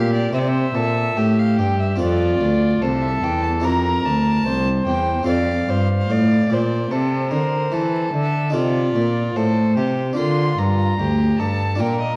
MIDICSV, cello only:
0, 0, Header, 1, 2, 480
1, 0, Start_track
1, 0, Key_signature, -1, "major"
1, 0, Tempo, 827586
1, 1152, Time_signature, 4, 2, 24, 8
1, 2586, Tempo, 815217
1, 4991, Key_signature, -2, "major"
1, 7123, End_track
2, 0, Start_track
2, 0, Title_t, "Cello"
2, 0, Program_c, 0, 42
2, 0, Note_on_c, 0, 46, 70
2, 182, Note_off_c, 0, 46, 0
2, 190, Note_on_c, 0, 48, 78
2, 426, Note_off_c, 0, 48, 0
2, 432, Note_on_c, 0, 46, 64
2, 668, Note_off_c, 0, 46, 0
2, 675, Note_on_c, 0, 45, 65
2, 916, Note_on_c, 0, 43, 61
2, 925, Note_off_c, 0, 45, 0
2, 1149, Note_off_c, 0, 43, 0
2, 1153, Note_on_c, 0, 41, 73
2, 1388, Note_off_c, 0, 41, 0
2, 1393, Note_on_c, 0, 38, 68
2, 1625, Note_off_c, 0, 38, 0
2, 1629, Note_on_c, 0, 36, 63
2, 1865, Note_off_c, 0, 36, 0
2, 1870, Note_on_c, 0, 40, 67
2, 2107, Note_on_c, 0, 41, 69
2, 2116, Note_off_c, 0, 40, 0
2, 2346, Note_off_c, 0, 41, 0
2, 2349, Note_on_c, 0, 38, 58
2, 2580, Note_off_c, 0, 38, 0
2, 2584, Note_on_c, 0, 36, 70
2, 2820, Note_off_c, 0, 36, 0
2, 2828, Note_on_c, 0, 40, 57
2, 3059, Note_off_c, 0, 40, 0
2, 3062, Note_on_c, 0, 41, 64
2, 3299, Note_off_c, 0, 41, 0
2, 3303, Note_on_c, 0, 43, 69
2, 3541, Note_off_c, 0, 43, 0
2, 3545, Note_on_c, 0, 45, 70
2, 3783, Note_off_c, 0, 45, 0
2, 3785, Note_on_c, 0, 46, 64
2, 4022, Note_off_c, 0, 46, 0
2, 4028, Note_on_c, 0, 48, 70
2, 4269, Note_on_c, 0, 50, 63
2, 4278, Note_off_c, 0, 48, 0
2, 4511, Note_off_c, 0, 50, 0
2, 4514, Note_on_c, 0, 52, 72
2, 4748, Note_off_c, 0, 52, 0
2, 4751, Note_on_c, 0, 50, 59
2, 4990, Note_on_c, 0, 48, 70
2, 4998, Note_off_c, 0, 50, 0
2, 5228, Note_off_c, 0, 48, 0
2, 5232, Note_on_c, 0, 46, 58
2, 5466, Note_off_c, 0, 46, 0
2, 5473, Note_on_c, 0, 45, 62
2, 5711, Note_on_c, 0, 48, 64
2, 5720, Note_off_c, 0, 45, 0
2, 5948, Note_off_c, 0, 48, 0
2, 5954, Note_on_c, 0, 50, 73
2, 6185, Note_off_c, 0, 50, 0
2, 6193, Note_on_c, 0, 43, 62
2, 6424, Note_off_c, 0, 43, 0
2, 6432, Note_on_c, 0, 38, 64
2, 6663, Note_off_c, 0, 38, 0
2, 6671, Note_on_c, 0, 43, 60
2, 6911, Note_on_c, 0, 46, 65
2, 6920, Note_off_c, 0, 43, 0
2, 7123, Note_off_c, 0, 46, 0
2, 7123, End_track
0, 0, End_of_file